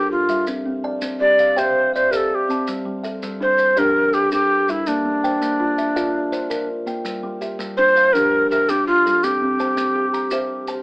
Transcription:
0.00 0.29 D4 medium
0.00 0.11 G4 medium
0.00 0.30 G4 medium
0.00 0.30 A4 medium
0.00 0.29 A#4 medium
0.11 0.45 F4 medium
0.29 0.66 G3 medium
0.29 0.66 E5 medium
0.29 maracas medium
0.47 0.84 C4 medium
0.47 maracas medium
0.66 1.02 C4 medium
0.84 1.39 D5 medium
0.84 1.39 A5 medium
1.02 1.39 C4 medium
1.02 maracas medium
1.20 1.58 G4 medium
1.20 1.60 D5 loud
1.39 1.94 F5 medium
1.39 maracas medium
1.56 1.94 G4 medium
1.56 1.93 C5 medium
1.56 1.94 C5 medium
1.56 2.13 E5 medium
1.56 2.12 G5 medium
1.56 maracas medium
1.94 2.13 C5 medium
1.94 2.50 D5 medium
1.94 2.49 E5 medium
1.94 maracas medium
2.11 2.48 G4 medium
2.11 2.17 A#4 medium
2.11 2.50 C5 medium
2.11 maracas medium
2.16 2.30 A4 medium
2.30 2.36 A4 medium
2.35 2.67 G4 medium
2.49 2.85 C4 medium
2.49 2.86 A5 medium
2.49 maracas medium
2.67 3.04 G3 medium
2.67 maracas medium
2.85 3.22 G3 medium
3.03 3.59 A4 medium
3.03 3.58 E5 medium
3.03 maracas soft
3.23 3.59 G3 medium
3.23 maracas medium
3.41 3.77 D4 medium
3.41 3.80 C5 medium
3.58 4.14 C5 medium
3.58 maracas medium
3.77 4.14 D4 medium
3.77 4.13 G4 medium
3.77 4.32 A#4 medium
3.77 4.15 A#4 loud
3.77 4.31 D5 medium
3.77 maracas medium
4.13 4.32 G4 medium
4.13 4.69 A4 medium
4.13 4.68 A#4 medium
4.13 maracas medium
4.32 4.68 D4 medium
4.32 4.69 G4 medium
4.32 4.72 G4 medium
4.32 maracas medium
4.68 5.05 G3 medium
4.68 4.89 E4 medium
4.68 5.05 E5 medium
4.68 maracas medium
4.87 5.24 A#3 medium
4.87 6.69 D4 medium
4.87 maracas medium
5.05 5.41 A#3 medium
5.24 5.78 C5 medium
5.24 5.78 G5 medium
5.24 maracas medium
5.42 5.78 A#3 medium
5.42 maracas medium
5.60 5.96 F4 medium
5.78 6.32 E5 medium
5.78 maracas medium
5.96 6.32 F4 medium
5.96 6.32 A#4 medium
5.96 6.51 D5 medium
5.96 6.51 F5 medium
5.96 maracas medium
6.32 6.87 C5 medium
6.32 6.87 D5 medium
6.32 maracas medium
6.50 6.86 F4 medium
6.50 6.87 A#4 medium
6.50 maracas medium
6.86 7.23 A#3 medium
6.86 7.23 G5 medium
6.86 maracas medium
7.05 7.41 G3 medium
7.05 maracas medium
7.23 7.60 G3 medium
7.41 7.96 G4 medium
7.41 7.96 E5 medium
7.41 maracas medium
7.59 7.96 G3 medium
7.59 maracas medium
7.77 8.15 D4 medium
7.77 8.14 C5 loud
7.96 8.50 C5 medium
7.96 8.51 F5 medium
7.96 maracas medium
8.13 8.51 D4 medium
8.13 8.51 G4 medium
8.13 8.50 A#4 loud
8.13 8.70 A#4 medium
8.13 maracas medium
8.50 8.67 G4 medium
8.50 8.71 A#4 medium
8.50 9.06 E5 medium
8.50 maracas medium
8.69 9.06 D4 medium
8.69 9.05 G4 medium
8.69 8.86 G4 loud
8.69 maracas medium
8.87 9.25 F4 loud
9.06 9.42 G3 medium
9.06 9.42 A4 medium
9.06 maracas medium
9.23 9.60 C4 medium
9.23 10.68 G4 medium
9.23 maracas medium
9.41 9.77 C4 medium
9.60 10.14 C5 medium
9.60 10.14 A5 medium
9.60 maracas medium
9.77 10.13 C4 medium
9.77 maracas medium
9.96 10.32 G4 medium
10.14 10.68 A#5 medium
10.14 maracas medium
10.31 10.68 G4 medium
10.31 10.68 C5 medium
10.31 10.83 E5 medium
10.31 maracas medium
10.68 10.83 C5 medium
10.68 10.83 A5 medium
10.68 maracas medium

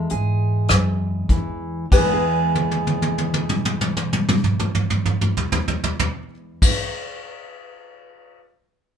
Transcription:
0.00 1.92 E2 medium
0.00 1.85 G#3 medium
0.00 1.27 E5 medium
0.10 0.65 G#2 medium
0.10 1.85 G#4 medium
0.10 closed hi-hat soft
0.68 1.26 F#2 medium
0.68 cross-stick medium
0.68 closed hi-hat medium
1.29 1.88 E2 medium
1.29 1.85 E3 medium
1.29 kick medium
1.29 closed hi-hat soft
1.92 6.83 E2 medium
1.92 6.88 E2 medium
1.92 6.83 G#4 medium
1.92 6.83 B4 medium
1.92 kick medium
1.92 crash medium
1.98 6.90 E3 medium
2.03 6.93 G#3 medium
2.08 6.95 B3 medium
2.13 6.98 G#4 medium
2.55 high tom soft
2.71 high tom soft
2.87 high tom soft
3.02 high tom soft
3.18 high tom soft
3.34 high tom soft
3.49 mid tom soft
3.65 mid tom soft
3.81 mid tom soft
3.97 mid tom soft
4.13 mid tom soft
4.29 mid tom medium
4.44 mid tom medium
4.59 mid tom medium
4.75 mid tom medium
4.90 mid tom medium
5.05 mid tom medium
5.21 mid tom medium
5.37 floor tom medium
5.52 floor tom medium
5.68 floor tom medium
5.84 floor tom medium
5.99 floor tom medium
6.62 kick medium
6.62 crash medium

